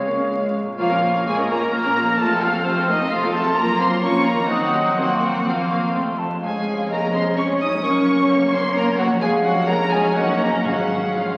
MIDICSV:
0, 0, Header, 1, 11, 480
1, 0, Start_track
1, 0, Key_signature, -5, "minor"
1, 0, Tempo, 475059
1, 788, Time_signature, 3, 2, 24, 8
1, 1271, Tempo, 461184
1, 4151, Tempo, 479233
1, 6558, Key_signature, -5, "major"
1, 7031, Tempo, 462963
1, 9911, Tempo, 493827
1, 11555, End_track
2, 0, Start_track
2, 0, Title_t, "Flute"
2, 0, Program_c, 0, 73
2, 786, Note_on_c, 0, 85, 61
2, 1711, Note_off_c, 0, 85, 0
2, 1753, Note_on_c, 0, 89, 74
2, 2695, Note_off_c, 0, 89, 0
2, 2712, Note_on_c, 0, 89, 77
2, 3187, Note_off_c, 0, 89, 0
2, 3203, Note_on_c, 0, 84, 78
2, 3832, Note_off_c, 0, 84, 0
2, 4151, Note_on_c, 0, 82, 67
2, 4614, Note_off_c, 0, 82, 0
2, 4626, Note_on_c, 0, 87, 64
2, 5101, Note_off_c, 0, 87, 0
2, 5107, Note_on_c, 0, 84, 52
2, 5537, Note_off_c, 0, 84, 0
2, 5584, Note_on_c, 0, 84, 68
2, 5644, Note_off_c, 0, 84, 0
2, 5830, Note_on_c, 0, 85, 63
2, 5890, Note_off_c, 0, 85, 0
2, 6068, Note_on_c, 0, 84, 61
2, 6318, Note_on_c, 0, 81, 53
2, 6333, Note_off_c, 0, 84, 0
2, 6535, Note_off_c, 0, 81, 0
2, 6541, Note_on_c, 0, 77, 58
2, 6989, Note_off_c, 0, 77, 0
2, 7021, Note_on_c, 0, 75, 66
2, 7507, Note_on_c, 0, 73, 59
2, 7522, Note_off_c, 0, 75, 0
2, 7997, Note_on_c, 0, 70, 66
2, 8012, Note_off_c, 0, 73, 0
2, 8476, Note_on_c, 0, 73, 84
2, 8492, Note_off_c, 0, 70, 0
2, 9423, Note_off_c, 0, 73, 0
2, 9429, Note_on_c, 0, 77, 85
2, 9907, Note_on_c, 0, 73, 70
2, 9922, Note_off_c, 0, 77, 0
2, 10365, Note_off_c, 0, 73, 0
2, 10371, Note_on_c, 0, 75, 71
2, 10841, Note_off_c, 0, 75, 0
2, 10847, Note_on_c, 0, 77, 58
2, 11555, Note_off_c, 0, 77, 0
2, 11555, End_track
3, 0, Start_track
3, 0, Title_t, "Violin section"
3, 0, Program_c, 1, 48
3, 0, Note_on_c, 1, 77, 41
3, 564, Note_off_c, 1, 77, 0
3, 794, Note_on_c, 1, 77, 72
3, 1241, Note_off_c, 1, 77, 0
3, 1277, Note_on_c, 1, 80, 83
3, 1360, Note_off_c, 1, 80, 0
3, 1516, Note_on_c, 1, 82, 69
3, 1750, Note_off_c, 1, 82, 0
3, 1761, Note_on_c, 1, 82, 84
3, 2228, Note_off_c, 1, 82, 0
3, 2231, Note_on_c, 1, 81, 86
3, 2472, Note_on_c, 1, 77, 77
3, 2473, Note_off_c, 1, 81, 0
3, 2702, Note_on_c, 1, 72, 80
3, 2713, Note_off_c, 1, 77, 0
3, 2950, Note_off_c, 1, 72, 0
3, 2956, Note_on_c, 1, 75, 80
3, 3191, Note_on_c, 1, 77, 79
3, 3193, Note_off_c, 1, 75, 0
3, 3428, Note_on_c, 1, 81, 83
3, 3434, Note_off_c, 1, 77, 0
3, 3666, Note_off_c, 1, 81, 0
3, 3671, Note_on_c, 1, 82, 97
3, 3911, Note_off_c, 1, 82, 0
3, 3913, Note_on_c, 1, 84, 84
3, 4151, Note_off_c, 1, 84, 0
3, 4155, Note_on_c, 1, 85, 85
3, 4381, Note_off_c, 1, 85, 0
3, 4384, Note_on_c, 1, 82, 86
3, 4624, Note_off_c, 1, 82, 0
3, 4629, Note_on_c, 1, 78, 76
3, 5100, Note_off_c, 1, 78, 0
3, 5112, Note_on_c, 1, 78, 68
3, 5587, Note_off_c, 1, 78, 0
3, 5605, Note_on_c, 1, 77, 58
3, 6082, Note_off_c, 1, 77, 0
3, 6564, Note_on_c, 1, 80, 63
3, 7002, Note_off_c, 1, 80, 0
3, 7039, Note_on_c, 1, 82, 74
3, 7272, Note_off_c, 1, 82, 0
3, 7277, Note_on_c, 1, 84, 73
3, 7360, Note_off_c, 1, 84, 0
3, 7516, Note_on_c, 1, 85, 86
3, 7599, Note_off_c, 1, 85, 0
3, 7775, Note_on_c, 1, 87, 74
3, 7997, Note_on_c, 1, 85, 84
3, 8004, Note_off_c, 1, 87, 0
3, 8718, Note_off_c, 1, 85, 0
3, 8726, Note_on_c, 1, 84, 93
3, 8961, Note_off_c, 1, 84, 0
3, 8962, Note_on_c, 1, 82, 92
3, 9045, Note_off_c, 1, 82, 0
3, 9187, Note_on_c, 1, 78, 78
3, 9270, Note_off_c, 1, 78, 0
3, 9420, Note_on_c, 1, 80, 89
3, 9503, Note_off_c, 1, 80, 0
3, 9654, Note_on_c, 1, 78, 83
3, 9898, Note_off_c, 1, 78, 0
3, 9902, Note_on_c, 1, 82, 95
3, 10137, Note_off_c, 1, 82, 0
3, 10138, Note_on_c, 1, 80, 82
3, 10363, Note_on_c, 1, 78, 79
3, 10373, Note_off_c, 1, 80, 0
3, 10608, Note_off_c, 1, 78, 0
3, 10611, Note_on_c, 1, 82, 69
3, 10857, Note_on_c, 1, 78, 67
3, 10858, Note_off_c, 1, 82, 0
3, 11337, Note_off_c, 1, 78, 0
3, 11349, Note_on_c, 1, 77, 53
3, 11555, Note_off_c, 1, 77, 0
3, 11555, End_track
4, 0, Start_track
4, 0, Title_t, "Trumpet section"
4, 0, Program_c, 2, 61
4, 0, Note_on_c, 2, 73, 52
4, 520, Note_off_c, 2, 73, 0
4, 11555, End_track
5, 0, Start_track
5, 0, Title_t, "Violin section"
5, 0, Program_c, 3, 48
5, 0, Note_on_c, 3, 61, 44
5, 552, Note_off_c, 3, 61, 0
5, 783, Note_on_c, 3, 65, 65
5, 1235, Note_off_c, 3, 65, 0
5, 1270, Note_on_c, 3, 68, 71
5, 1509, Note_off_c, 3, 68, 0
5, 1525, Note_on_c, 3, 70, 61
5, 1753, Note_off_c, 3, 70, 0
5, 1765, Note_on_c, 3, 70, 67
5, 2228, Note_on_c, 3, 69, 74
5, 2230, Note_off_c, 3, 70, 0
5, 2311, Note_off_c, 3, 69, 0
5, 2469, Note_on_c, 3, 65, 66
5, 2552, Note_off_c, 3, 65, 0
5, 2704, Note_on_c, 3, 60, 70
5, 2946, Note_off_c, 3, 60, 0
5, 2950, Note_on_c, 3, 63, 69
5, 3195, Note_off_c, 3, 63, 0
5, 3201, Note_on_c, 3, 65, 68
5, 3434, Note_off_c, 3, 65, 0
5, 3443, Note_on_c, 3, 69, 75
5, 3674, Note_off_c, 3, 69, 0
5, 3675, Note_on_c, 3, 70, 81
5, 3903, Note_on_c, 3, 72, 75
5, 3913, Note_off_c, 3, 70, 0
5, 4145, Note_off_c, 3, 72, 0
5, 4149, Note_on_c, 3, 73, 81
5, 4383, Note_off_c, 3, 73, 0
5, 4394, Note_on_c, 3, 70, 70
5, 4474, Note_off_c, 3, 70, 0
5, 4625, Note_on_c, 3, 66, 71
5, 5104, Note_off_c, 3, 66, 0
5, 5116, Note_on_c, 3, 66, 69
5, 5589, Note_off_c, 3, 66, 0
5, 5610, Note_on_c, 3, 65, 48
5, 6076, Note_off_c, 3, 65, 0
5, 6556, Note_on_c, 3, 68, 61
5, 6997, Note_off_c, 3, 68, 0
5, 7030, Note_on_c, 3, 70, 69
5, 7272, Note_off_c, 3, 70, 0
5, 7272, Note_on_c, 3, 72, 68
5, 7512, Note_on_c, 3, 73, 73
5, 7515, Note_off_c, 3, 72, 0
5, 7752, Note_off_c, 3, 73, 0
5, 7752, Note_on_c, 3, 75, 68
5, 7835, Note_off_c, 3, 75, 0
5, 8003, Note_on_c, 3, 73, 67
5, 8706, Note_off_c, 3, 73, 0
5, 8718, Note_on_c, 3, 72, 81
5, 8801, Note_off_c, 3, 72, 0
5, 8960, Note_on_c, 3, 70, 85
5, 9191, Note_off_c, 3, 70, 0
5, 9200, Note_on_c, 3, 66, 83
5, 9429, Note_on_c, 3, 68, 76
5, 9433, Note_off_c, 3, 66, 0
5, 9663, Note_off_c, 3, 68, 0
5, 9672, Note_on_c, 3, 66, 69
5, 9907, Note_off_c, 3, 66, 0
5, 9915, Note_on_c, 3, 70, 80
5, 10141, Note_on_c, 3, 68, 71
5, 10143, Note_off_c, 3, 70, 0
5, 10367, Note_on_c, 3, 66, 67
5, 10370, Note_off_c, 3, 68, 0
5, 10602, Note_on_c, 3, 70, 67
5, 10605, Note_off_c, 3, 66, 0
5, 10852, Note_off_c, 3, 70, 0
5, 10858, Note_on_c, 3, 66, 58
5, 11347, Note_off_c, 3, 66, 0
5, 11351, Note_on_c, 3, 65, 45
5, 11555, Note_off_c, 3, 65, 0
5, 11555, End_track
6, 0, Start_track
6, 0, Title_t, "Viola section"
6, 0, Program_c, 4, 48
6, 0, Note_on_c, 4, 56, 45
6, 557, Note_off_c, 4, 56, 0
6, 790, Note_on_c, 4, 58, 51
6, 794, Note_on_c, 4, 65, 51
6, 902, Note_off_c, 4, 58, 0
6, 905, Note_off_c, 4, 65, 0
6, 909, Note_on_c, 4, 70, 46
6, 911, Note_on_c, 4, 61, 45
6, 1031, Note_off_c, 4, 70, 0
6, 1031, Note_on_c, 4, 58, 43
6, 1031, Note_on_c, 4, 65, 46
6, 1032, Note_off_c, 4, 61, 0
6, 1152, Note_off_c, 4, 58, 0
6, 1152, Note_off_c, 4, 65, 0
6, 1156, Note_on_c, 4, 61, 39
6, 1156, Note_on_c, 4, 70, 43
6, 1273, Note_off_c, 4, 61, 0
6, 1273, Note_off_c, 4, 70, 0
6, 1280, Note_on_c, 4, 65, 47
6, 1281, Note_on_c, 4, 58, 47
6, 1390, Note_off_c, 4, 58, 0
6, 1390, Note_off_c, 4, 65, 0
6, 1400, Note_on_c, 4, 61, 43
6, 1401, Note_on_c, 4, 70, 42
6, 1517, Note_off_c, 4, 61, 0
6, 1518, Note_off_c, 4, 70, 0
6, 1519, Note_on_c, 4, 58, 47
6, 1525, Note_on_c, 4, 65, 49
6, 1637, Note_off_c, 4, 58, 0
6, 1639, Note_on_c, 4, 61, 42
6, 1640, Note_off_c, 4, 65, 0
6, 1640, Note_on_c, 4, 70, 41
6, 1756, Note_off_c, 4, 61, 0
6, 1757, Note_off_c, 4, 70, 0
6, 1759, Note_on_c, 4, 58, 52
6, 1760, Note_on_c, 4, 65, 49
6, 1868, Note_off_c, 4, 58, 0
6, 1868, Note_off_c, 4, 65, 0
6, 1886, Note_on_c, 4, 61, 47
6, 1887, Note_on_c, 4, 70, 50
6, 2000, Note_off_c, 4, 61, 0
6, 2000, Note_off_c, 4, 70, 0
6, 2001, Note_on_c, 4, 65, 48
6, 2005, Note_on_c, 4, 58, 49
6, 2118, Note_off_c, 4, 65, 0
6, 2120, Note_off_c, 4, 58, 0
6, 2121, Note_on_c, 4, 61, 51
6, 2122, Note_on_c, 4, 70, 48
6, 2238, Note_off_c, 4, 61, 0
6, 2238, Note_off_c, 4, 70, 0
6, 2239, Note_on_c, 4, 57, 57
6, 2240, Note_on_c, 4, 65, 62
6, 2349, Note_off_c, 4, 57, 0
6, 2349, Note_off_c, 4, 65, 0
6, 2361, Note_on_c, 4, 69, 47
6, 2362, Note_on_c, 4, 60, 52
6, 2478, Note_off_c, 4, 60, 0
6, 2478, Note_off_c, 4, 69, 0
6, 2479, Note_on_c, 4, 65, 45
6, 2481, Note_on_c, 4, 57, 48
6, 2597, Note_off_c, 4, 57, 0
6, 2597, Note_off_c, 4, 65, 0
6, 2602, Note_on_c, 4, 60, 48
6, 2603, Note_on_c, 4, 69, 48
6, 2718, Note_off_c, 4, 60, 0
6, 2719, Note_off_c, 4, 69, 0
6, 2724, Note_on_c, 4, 65, 56
6, 2725, Note_on_c, 4, 57, 54
6, 2832, Note_off_c, 4, 57, 0
6, 2832, Note_off_c, 4, 65, 0
6, 2851, Note_on_c, 4, 60, 48
6, 2851, Note_on_c, 4, 69, 50
6, 2964, Note_off_c, 4, 60, 0
6, 2964, Note_off_c, 4, 69, 0
6, 2970, Note_on_c, 4, 65, 56
6, 2974, Note_on_c, 4, 57, 57
6, 3084, Note_off_c, 4, 65, 0
6, 3086, Note_off_c, 4, 57, 0
6, 3094, Note_on_c, 4, 69, 45
6, 3095, Note_on_c, 4, 60, 48
6, 3202, Note_on_c, 4, 57, 61
6, 3202, Note_on_c, 4, 65, 55
6, 3206, Note_off_c, 4, 69, 0
6, 3207, Note_off_c, 4, 60, 0
6, 3312, Note_off_c, 4, 57, 0
6, 3312, Note_off_c, 4, 65, 0
6, 3327, Note_on_c, 4, 60, 56
6, 3329, Note_on_c, 4, 69, 49
6, 3442, Note_off_c, 4, 60, 0
6, 3442, Note_on_c, 4, 57, 54
6, 3443, Note_off_c, 4, 69, 0
6, 3445, Note_on_c, 4, 65, 54
6, 3558, Note_on_c, 4, 69, 57
6, 3559, Note_off_c, 4, 57, 0
6, 3559, Note_on_c, 4, 60, 54
6, 3560, Note_off_c, 4, 65, 0
6, 3676, Note_off_c, 4, 69, 0
6, 3677, Note_off_c, 4, 60, 0
6, 3679, Note_on_c, 4, 65, 61
6, 3682, Note_on_c, 4, 58, 66
6, 4119, Note_off_c, 4, 65, 0
6, 4121, Note_off_c, 4, 58, 0
6, 4158, Note_on_c, 4, 58, 61
6, 4158, Note_on_c, 4, 65, 65
6, 4618, Note_off_c, 4, 58, 0
6, 4618, Note_off_c, 4, 65, 0
6, 4619, Note_on_c, 4, 63, 59
6, 4622, Note_on_c, 4, 60, 57
6, 5106, Note_off_c, 4, 60, 0
6, 5114, Note_off_c, 4, 63, 0
6, 5118, Note_on_c, 4, 58, 56
6, 5118, Note_on_c, 4, 60, 59
6, 5590, Note_off_c, 4, 60, 0
6, 5592, Note_off_c, 4, 58, 0
6, 5602, Note_on_c, 4, 60, 53
6, 5604, Note_on_c, 4, 58, 50
6, 6068, Note_off_c, 4, 60, 0
6, 6072, Note_off_c, 4, 58, 0
6, 6080, Note_on_c, 4, 57, 51
6, 6080, Note_on_c, 4, 60, 51
6, 6160, Note_off_c, 4, 60, 0
6, 6356, Note_off_c, 4, 57, 0
6, 6554, Note_on_c, 4, 61, 59
6, 6555, Note_on_c, 4, 56, 58
6, 7957, Note_off_c, 4, 56, 0
6, 7995, Note_on_c, 4, 58, 66
6, 9386, Note_off_c, 4, 58, 0
6, 9387, Note_off_c, 4, 61, 0
6, 9427, Note_on_c, 4, 56, 74
6, 9433, Note_on_c, 4, 61, 79
6, 10335, Note_off_c, 4, 56, 0
6, 10377, Note_on_c, 4, 58, 59
6, 10826, Note_off_c, 4, 58, 0
6, 10857, Note_on_c, 4, 56, 53
6, 11555, Note_off_c, 4, 56, 0
6, 11555, Note_off_c, 4, 61, 0
6, 11555, End_track
7, 0, Start_track
7, 0, Title_t, "Harp"
7, 0, Program_c, 5, 46
7, 0, Note_on_c, 5, 49, 39
7, 0, Note_on_c, 5, 56, 32
7, 0, Note_on_c, 5, 73, 36
7, 69, Note_on_c, 5, 68, 33
7, 306, Note_on_c, 5, 65, 29
7, 539, Note_off_c, 5, 56, 0
7, 551, Note_on_c, 5, 56, 31
7, 612, Note_on_c, 5, 46, 51
7, 657, Note_on_c, 5, 58, 42
7, 688, Note_off_c, 5, 65, 0
7, 700, Note_on_c, 5, 65, 41
7, 736, Note_off_c, 5, 73, 0
7, 748, Note_on_c, 5, 73, 44
7, 807, Note_off_c, 5, 68, 0
7, 808, Note_off_c, 5, 49, 0
7, 810, Note_off_c, 5, 56, 0
7, 2046, Note_on_c, 5, 41, 58
7, 2094, Note_on_c, 5, 60, 49
7, 2130, Note_off_c, 5, 65, 0
7, 2142, Note_on_c, 5, 65, 43
7, 2163, Note_off_c, 5, 46, 0
7, 2186, Note_off_c, 5, 58, 0
7, 2188, Note_on_c, 5, 72, 49
7, 2233, Note_off_c, 5, 73, 0
7, 3490, Note_on_c, 5, 42, 62
7, 3538, Note_on_c, 5, 61, 49
7, 3570, Note_off_c, 5, 65, 0
7, 3583, Note_on_c, 5, 65, 52
7, 3601, Note_off_c, 5, 41, 0
7, 3625, Note_off_c, 5, 60, 0
7, 3631, Note_on_c, 5, 70, 49
7, 3672, Note_off_c, 5, 72, 0
7, 4442, Note_on_c, 5, 51, 45
7, 4486, Note_on_c, 5, 60, 42
7, 4531, Note_on_c, 5, 63, 45
7, 4554, Note_off_c, 5, 42, 0
7, 4574, Note_on_c, 5, 72, 42
7, 4577, Note_off_c, 5, 61, 0
7, 4598, Note_off_c, 5, 65, 0
7, 4622, Note_off_c, 5, 70, 0
7, 4934, Note_on_c, 5, 41, 47
7, 4980, Note_on_c, 5, 58, 43
7, 5012, Note_off_c, 5, 60, 0
7, 5024, Note_on_c, 5, 60, 40
7, 5045, Note_off_c, 5, 51, 0
7, 5059, Note_off_c, 5, 72, 0
7, 5089, Note_off_c, 5, 63, 0
7, 5886, Note_off_c, 5, 41, 0
7, 5898, Note_on_c, 5, 41, 41
7, 5942, Note_on_c, 5, 57, 38
7, 5987, Note_on_c, 5, 65, 37
7, 6030, Note_off_c, 5, 58, 0
7, 6031, Note_on_c, 5, 72, 36
7, 6365, Note_off_c, 5, 41, 0
7, 6377, Note_on_c, 5, 41, 54
7, 6420, Note_on_c, 5, 56, 42
7, 6467, Note_on_c, 5, 61, 45
7, 6508, Note_off_c, 5, 57, 0
7, 6513, Note_on_c, 5, 73, 43
7, 6530, Note_off_c, 5, 60, 0
7, 6552, Note_off_c, 5, 72, 0
7, 7811, Note_on_c, 5, 42, 58
7, 7859, Note_on_c, 5, 58, 47
7, 7892, Note_off_c, 5, 61, 0
7, 7905, Note_on_c, 5, 61, 51
7, 7926, Note_off_c, 5, 41, 0
7, 7939, Note_off_c, 5, 73, 0
7, 7948, Note_off_c, 5, 56, 0
7, 7951, Note_on_c, 5, 73, 46
7, 7972, Note_off_c, 5, 65, 0
7, 9243, Note_on_c, 5, 41, 67
7, 9289, Note_on_c, 5, 56, 54
7, 9322, Note_off_c, 5, 61, 0
7, 9335, Note_on_c, 5, 61, 54
7, 9354, Note_off_c, 5, 42, 0
7, 9369, Note_off_c, 5, 73, 0
7, 9378, Note_off_c, 5, 58, 0
7, 9382, Note_on_c, 5, 73, 55
7, 10196, Note_on_c, 5, 42, 50
7, 10239, Note_on_c, 5, 58, 44
7, 10281, Note_on_c, 5, 63, 43
7, 10306, Note_off_c, 5, 41, 0
7, 10315, Note_off_c, 5, 73, 0
7, 10326, Note_on_c, 5, 73, 45
7, 10327, Note_off_c, 5, 56, 0
7, 10684, Note_on_c, 5, 44, 47
7, 10727, Note_on_c, 5, 56, 42
7, 10761, Note_off_c, 5, 61, 0
7, 10773, Note_on_c, 5, 61, 42
7, 10789, Note_off_c, 5, 42, 0
7, 10804, Note_off_c, 5, 73, 0
7, 10811, Note_off_c, 5, 58, 0
7, 10815, Note_on_c, 5, 73, 40
7, 10832, Note_off_c, 5, 63, 0
7, 11555, Note_off_c, 5, 44, 0
7, 11555, Note_off_c, 5, 56, 0
7, 11555, Note_off_c, 5, 61, 0
7, 11555, Note_off_c, 5, 73, 0
7, 11555, End_track
8, 0, Start_track
8, 0, Title_t, "French horn section"
8, 0, Program_c, 6, 60
8, 78, Note_on_c, 6, 58, 45
8, 307, Note_on_c, 6, 56, 49
8, 311, Note_off_c, 6, 58, 0
8, 535, Note_off_c, 6, 56, 0
8, 547, Note_on_c, 6, 56, 42
8, 656, Note_off_c, 6, 56, 0
8, 787, Note_on_c, 6, 53, 68
8, 1237, Note_off_c, 6, 53, 0
8, 1276, Note_on_c, 6, 56, 69
8, 1512, Note_off_c, 6, 56, 0
8, 1525, Note_on_c, 6, 58, 53
8, 1750, Note_off_c, 6, 58, 0
8, 1763, Note_on_c, 6, 58, 72
8, 2229, Note_off_c, 6, 58, 0
8, 2241, Note_on_c, 6, 57, 79
8, 2473, Note_off_c, 6, 57, 0
8, 2484, Note_on_c, 6, 53, 66
8, 2590, Note_off_c, 6, 53, 0
8, 2721, Note_on_c, 6, 48, 69
8, 2828, Note_off_c, 6, 48, 0
8, 2958, Note_on_c, 6, 51, 68
8, 3066, Note_off_c, 6, 51, 0
8, 3207, Note_on_c, 6, 53, 67
8, 3313, Note_off_c, 6, 53, 0
8, 3440, Note_on_c, 6, 57, 70
8, 3672, Note_off_c, 6, 57, 0
8, 3685, Note_on_c, 6, 58, 81
8, 3914, Note_on_c, 6, 60, 73
8, 3918, Note_off_c, 6, 58, 0
8, 4146, Note_on_c, 6, 61, 75
8, 4151, Note_off_c, 6, 60, 0
8, 4377, Note_off_c, 6, 61, 0
8, 4386, Note_on_c, 6, 58, 70
8, 4620, Note_off_c, 6, 58, 0
8, 4623, Note_on_c, 6, 54, 71
8, 5093, Note_off_c, 6, 54, 0
8, 5105, Note_on_c, 6, 54, 72
8, 5583, Note_off_c, 6, 54, 0
8, 5599, Note_on_c, 6, 53, 49
8, 6070, Note_off_c, 6, 53, 0
8, 6561, Note_on_c, 6, 56, 64
8, 7000, Note_off_c, 6, 56, 0
8, 7040, Note_on_c, 6, 58, 67
8, 7272, Note_on_c, 6, 60, 66
8, 7277, Note_off_c, 6, 58, 0
8, 7506, Note_on_c, 6, 61, 70
8, 7515, Note_off_c, 6, 60, 0
8, 7754, Note_off_c, 6, 61, 0
8, 7755, Note_on_c, 6, 63, 71
8, 7988, Note_on_c, 6, 61, 88
8, 7998, Note_off_c, 6, 63, 0
8, 8699, Note_off_c, 6, 61, 0
8, 8710, Note_on_c, 6, 60, 77
8, 8819, Note_off_c, 6, 60, 0
8, 8954, Note_on_c, 6, 58, 87
8, 9188, Note_off_c, 6, 58, 0
8, 9199, Note_on_c, 6, 54, 69
8, 9424, Note_on_c, 6, 56, 82
8, 9428, Note_off_c, 6, 54, 0
8, 9533, Note_off_c, 6, 56, 0
8, 9667, Note_on_c, 6, 54, 71
8, 9897, Note_on_c, 6, 58, 76
8, 9904, Note_off_c, 6, 54, 0
8, 10135, Note_off_c, 6, 58, 0
8, 10138, Note_on_c, 6, 56, 74
8, 10373, Note_off_c, 6, 56, 0
8, 10378, Note_on_c, 6, 54, 64
8, 10485, Note_off_c, 6, 54, 0
8, 10613, Note_on_c, 6, 58, 59
8, 10724, Note_off_c, 6, 58, 0
8, 10864, Note_on_c, 6, 54, 67
8, 11341, Note_off_c, 6, 54, 0
8, 11363, Note_on_c, 6, 53, 44
8, 11555, Note_off_c, 6, 53, 0
8, 11555, End_track
9, 0, Start_track
9, 0, Title_t, "Timpani"
9, 0, Program_c, 7, 47
9, 10854, Note_on_c, 7, 44, 69
9, 11549, Note_off_c, 7, 44, 0
9, 11555, End_track
10, 0, Start_track
10, 0, Title_t, "Cello section"
10, 0, Program_c, 8, 48
10, 0, Note_on_c, 8, 49, 46
10, 581, Note_off_c, 8, 49, 0
10, 788, Note_on_c, 8, 46, 67
10, 1215, Note_off_c, 8, 46, 0
10, 1269, Note_on_c, 8, 46, 63
10, 1696, Note_off_c, 8, 46, 0
10, 1756, Note_on_c, 8, 46, 64
10, 2178, Note_off_c, 8, 46, 0
10, 2233, Note_on_c, 8, 41, 72
10, 2657, Note_off_c, 8, 41, 0
10, 2717, Note_on_c, 8, 41, 63
10, 3142, Note_off_c, 8, 41, 0
10, 3198, Note_on_c, 8, 41, 73
10, 3620, Note_off_c, 8, 41, 0
10, 3674, Note_on_c, 8, 42, 69
10, 4116, Note_off_c, 8, 42, 0
10, 4152, Note_on_c, 8, 41, 61
10, 4624, Note_off_c, 8, 41, 0
10, 4630, Note_on_c, 8, 39, 60
10, 5109, Note_off_c, 8, 39, 0
10, 5118, Note_on_c, 8, 41, 64
10, 6072, Note_off_c, 8, 41, 0
10, 6084, Note_on_c, 8, 41, 53
10, 6353, Note_off_c, 8, 41, 0
10, 6566, Note_on_c, 8, 41, 59
10, 7963, Note_off_c, 8, 41, 0
10, 8006, Note_on_c, 8, 42, 67
10, 9429, Note_on_c, 8, 41, 81
10, 9433, Note_off_c, 8, 42, 0
10, 10356, Note_off_c, 8, 41, 0
10, 10374, Note_on_c, 8, 42, 62
10, 10849, Note_off_c, 8, 42, 0
10, 10859, Note_on_c, 8, 44, 54
10, 11555, Note_off_c, 8, 44, 0
10, 11555, End_track
11, 0, Start_track
11, 0, Title_t, "Double bass section"
11, 0, Program_c, 10, 48
11, 0, Note_on_c, 10, 37, 47
11, 581, Note_off_c, 10, 37, 0
11, 794, Note_on_c, 10, 34, 71
11, 1218, Note_off_c, 10, 34, 0
11, 1276, Note_on_c, 10, 34, 57
11, 1700, Note_off_c, 10, 34, 0
11, 1757, Note_on_c, 10, 34, 58
11, 2179, Note_off_c, 10, 34, 0
11, 2240, Note_on_c, 10, 29, 69
11, 2661, Note_off_c, 10, 29, 0
11, 2717, Note_on_c, 10, 29, 71
11, 3142, Note_off_c, 10, 29, 0
11, 3200, Note_on_c, 10, 29, 71
11, 3621, Note_off_c, 10, 29, 0
11, 3678, Note_on_c, 10, 30, 67
11, 4119, Note_off_c, 10, 30, 0
11, 4153, Note_on_c, 10, 29, 61
11, 4625, Note_off_c, 10, 29, 0
11, 4626, Note_on_c, 10, 39, 65
11, 5107, Note_off_c, 10, 39, 0
11, 5117, Note_on_c, 10, 29, 63
11, 6066, Note_off_c, 10, 29, 0
11, 6078, Note_on_c, 10, 29, 55
11, 6350, Note_off_c, 10, 29, 0
11, 6559, Note_on_c, 10, 29, 66
11, 7959, Note_off_c, 10, 29, 0
11, 8002, Note_on_c, 10, 30, 64
11, 9430, Note_on_c, 10, 29, 85
11, 9431, Note_off_c, 10, 30, 0
11, 10357, Note_off_c, 10, 29, 0
11, 10376, Note_on_c, 10, 30, 61
11, 10850, Note_off_c, 10, 30, 0
11, 10861, Note_on_c, 10, 32, 58
11, 11555, Note_off_c, 10, 32, 0
11, 11555, End_track
0, 0, End_of_file